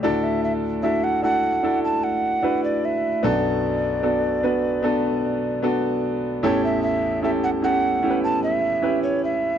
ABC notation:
X:1
M:4/4
L:1/16
Q:1/4=75
K:D
V:1 name="Recorder"
d e e2 e f f3 a f3 d e2 | d12 z4 | c e e2 e f f3 a e3 c e2 |]
V:2 name="Grand piano"
[DEFA]4 [DEFA]2 [DEFA]2 [DEFA]4 [DEFB]4 | [B,DFA]4 [B,DFA]2 [B,DFB]2 [B,DFA]4 [B,DFA]4 | [CEGA]4 [CEGA]2 [CEGA]2 [CEGAB]4 [CEGB]4 |]
V:3 name="Grand piano" clef=bass
[D,,A,,]16 | [B,,,F,,]16 | [A,,,E,,]16 |]